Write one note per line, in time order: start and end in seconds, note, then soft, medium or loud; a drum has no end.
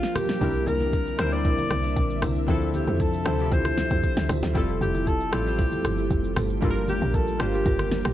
0.00 0.39 F3 medium
0.00 0.40 G3 medium
0.00 0.44 A#3 medium
0.00 2.44 A#3 medium
0.00 0.42 D4 medium
0.00 0.17 F4 loud
0.00 0.44 F4 medium
0.00 0.37 G4 medium
0.00 0.43 A#4 loud
0.00 0.43 C5 medium
0.00 snare medium
0.00 shaker medium
0.15 0.28 F4 medium
0.15 0.28 G4 medium
0.15 0.69 G4 loud
0.15 0.28 A#4 medium
0.15 cross-stick loud
0.15 open hi-hat medium
0.15 high conga medium
0.15 low conga medium
0.15 shaker loud
0.29 snare medium
0.29 shaker medium
0.40 0.66 C2 loud
0.40 2.46 D3 medium
0.40 1.03 G3 medium
0.40 1.04 C4 medium
0.40 0.77 D4 medium
0.40 1.04 D4 medium
0.40 0.78 E4 medium
0.40 1.05 E4 medium
0.40 0.78 A#4 loud
0.40 1.05 A#4 medium
0.40 4.51 E5 medium
0.40 kick loud
0.40 low conga medium
0.40 shaker medium
0.54 shaker soft
0.67 1.17 C2 medium
0.67 1.21 A#4 loud
0.67 high conga medium
0.67 shaker medium
0.80 1.16 D4 medium
0.80 1.16 E4 medium
0.80 1.16 A#4 medium
0.80 high conga medium
0.80 shaker medium
0.93 kick loud
0.93 shaker medium
1.07 shaker medium
1.17 1.57 D2 loud
1.17 1.29 G3 medium
1.17 1.30 C4 medium
1.17 1.43 D4 medium
1.17 1.30 D4 medium
1.17 1.43 E4 medium
1.17 1.30 E4 medium
1.17 1.43 A#4 medium
1.17 1.31 A#4 medium
1.17 1.34 C5 loud
1.17 cross-stick loud
1.17 shaker loud
1.31 2.14 G3 medium
1.31 2.15 C4 medium
1.31 2.15 D4 medium
1.31 2.16 E4 medium
1.31 2.16 C5 medium
1.31 2.23 D5 loud
1.31 shaker medium
1.45 1.81 D4 medium
1.45 1.81 E4 medium
1.45 1.81 A#4 loud
1.45 kick loud
1.45 low conga medium
1.45 shaker medium
1.58 high conga medium
1.58 shaker medium
1.70 1.96 C2 loud
1.70 cross-stick medium
1.70 high conga medium
1.70 shaker loud
1.84 1.95 D4 medium
1.84 1.95 E4 medium
1.84 1.96 A#4 medium
1.84 shaker medium
1.96 2.21 A#1 loud
1.96 kick loud
1.96 shaker medium
2.10 shaker medium
2.22 2.47 C2 loud
2.22 2.35 D4 medium
2.22 2.35 E4 medium
2.22 2.35 A#4 medium
2.22 cross-stick loud
2.22 open hi-hat medium
2.22 high conga medium
2.22 low conga medium
2.22 shaker medium
2.35 shaker medium
2.47 2.86 D2 loud
2.47 4.53 C3 medium
2.47 3.10 F3 medium
2.47 4.53 F3 medium
2.47 3.10 C4 medium
2.47 3.11 D4 medium
2.47 2.84 E4 medium
2.47 3.11 E4 medium
2.47 2.84 F4 medium
2.47 3.12 A4 loud
2.47 2.85 C5 loud
2.47 kick loud
2.47 low conga medium
2.47 shaker medium
2.61 shaker soft
2.74 3.03 G4 medium
2.74 high conga medium
2.74 shaker medium
2.87 3.25 F2 medium
2.87 3.23 E4 medium
2.87 3.23 F4 medium
2.87 3.23 C5 medium
2.87 high conga medium
2.87 shaker medium
3.00 3.54 A4 loud
3.00 kick loud
3.00 shaker medium
3.13 shaker medium
3.24 3.51 D2 loud
3.24 3.36 F3 medium
3.24 3.36 C4 medium
3.24 3.37 D4 medium
3.24 3.50 E4 medium
3.24 3.37 E4 medium
3.24 3.50 F4 medium
3.24 3.50 C5 medium
3.24 3.38 C5 medium
3.24 cross-stick loud
3.24 shaker loud
3.38 4.21 F3 medium
3.38 4.22 C4 medium
3.38 4.22 D4 medium
3.38 4.23 E4 medium
3.38 4.23 G4 medium
3.38 shaker medium
3.51 3.90 D2 medium
3.51 3.88 E4 loud
3.51 3.88 F4 medium
3.51 3.88 C5 loud
3.51 4.30 C5 loud
3.51 kick loud
3.51 low conga medium
3.51 shaker medium
3.65 cross-stick medium
3.65 high conga medium
3.65 shaker medium
3.78 snare medium
3.78 high conga medium
3.78 shaker loud
3.90 4.03 F2 medium
3.90 4.02 E4 medium
3.90 4.02 F4 medium
3.90 4.03 C5 medium
3.90 kick medium
3.90 shaker medium
4.03 kick loud
4.03 shaker medium
4.17 4.29 D2 medium
4.17 snare medium
4.17 shaker medium
4.29 4.42 D2 loud
4.29 4.41 E4 medium
4.29 4.42 F4 medium
4.29 4.42 C5 medium
4.29 cross-stick loud
4.29 open hi-hat medium
4.29 high conga medium
4.29 low conga medium
4.29 shaker medium
4.43 4.55 D2 loud
4.43 snare medium
4.43 shaker medium
4.53 4.80 F1 loud
4.53 6.60 F3 medium
4.53 5.17 G3 loud
4.53 6.60 A3 medium
4.53 5.17 C4 medium
4.53 4.91 E4 medium
4.53 5.18 E4 medium
4.53 5.18 F4 medium
4.53 4.91 G4 medium
4.53 6.60 G4 medium
4.53 4.92 A4 loud
4.53 5.19 A4 loud
4.53 kick loud
4.53 low conga medium
4.53 shaker medium
4.68 shaker soft
4.81 5.31 F1 loud
4.81 5.09 G4 loud
4.81 high conga medium
4.81 shaker medium
4.94 5.30 E4 medium
4.94 5.30 G4 medium
4.94 5.30 A4 medium
4.94 high conga medium
4.94 shaker medium
5.07 5.35 A4 loud
5.07 kick loud
5.07 shaker medium
5.20 shaker medium
5.31 5.71 A1 loud
5.31 5.43 G3 medium
5.31 5.43 C4 medium
5.31 5.57 E4 medium
5.31 5.44 E4 medium
5.31 5.44 F4 medium
5.31 5.57 G4 medium
5.31 6.11 G4 loud
5.31 5.57 A4 medium
5.31 5.45 A4 medium
5.31 cross-stick loud
5.31 shaker loud
5.45 6.28 G3 medium
5.45 6.29 C4 medium
5.45 6.29 E4 medium
5.45 6.29 F4 medium
5.45 6.30 C5 medium
5.45 shaker medium
5.58 5.95 E4 loud
5.58 5.95 G4 medium
5.58 5.95 A4 loud
5.58 kick loud
5.58 low conga medium
5.58 shaker medium
5.72 high conga medium
5.72 shaker medium
5.85 6.10 G1 loud
5.85 cross-stick medium
5.85 high conga medium
5.85 shaker loud
5.98 6.09 E4 medium
5.98 6.09 G4 medium
5.98 6.09 A4 medium
5.98 shaker medium
6.10 6.35 F1 loud
6.10 kick loud
6.10 shaker medium
6.24 shaker medium
6.36 6.61 G1 loud
6.36 6.48 E4 medium
6.36 6.49 G4 medium
6.36 6.49 A4 medium
6.36 cross-stick loud
6.36 open hi-hat medium
6.36 high conga medium
6.36 low conga medium
6.36 shaker medium
6.50 shaker medium
6.61 7.00 G1 loud
6.61 8.13 F3 medium
6.61 7.24 G3 medium
6.61 7.24 A#3 medium
6.61 8.13 A#3 medium
6.61 7.25 D4 medium
6.61 6.98 F4 loud
6.61 7.25 F4 medium
6.61 8.13 G4 medium
6.61 6.98 G4 medium
6.61 6.70 A4 medium
6.61 6.98 A#4 loud
6.61 kick loud
6.61 low conga medium
6.61 shaker medium
6.71 7.29 A#4 loud
6.75 shaker soft
6.88 7.16 G4 loud
6.88 high conga medium
6.88 shaker medium
7.01 7.39 A#1 loud
7.01 7.37 F4 medium
7.01 7.37 G4 medium
7.01 7.37 A#4 medium
7.01 high conga medium
7.01 shaker medium
7.14 7.42 A4 loud
7.14 kick loud
7.14 shaker medium
7.28 shaker medium
7.38 7.65 G1 loud
7.38 7.50 G3 medium
7.38 7.50 A#3 medium
7.38 7.51 D4 medium
7.38 7.64 F4 medium
7.38 7.51 F4 medium
7.38 7.64 G4 medium
7.38 8.13 G4 loud
7.38 7.64 A#4 medium
7.38 7.52 C5 medium
7.38 cross-stick loud
7.38 shaker loud
7.51 8.13 G3 medium
7.51 8.13 A#3 medium
7.51 8.13 D4 medium
7.51 8.13 F4 medium
7.51 8.13 G4 medium
7.51 shaker medium
7.65 8.04 G1 loud
7.65 8.02 F4 loud
7.65 8.02 G4 medium
7.65 8.02 A#4 loud
7.65 kick loud
7.65 low conga medium
7.65 shaker medium
7.79 cross-stick medium
7.79 high conga medium
7.79 shaker medium
7.92 snare medium
7.92 high conga medium
7.92 shaker loud
8.05 8.13 A1 medium
8.05 8.13 F4 medium
8.05 8.13 G4 medium
8.05 8.13 A#4 medium
8.05 cross-stick loud
8.05 shaker medium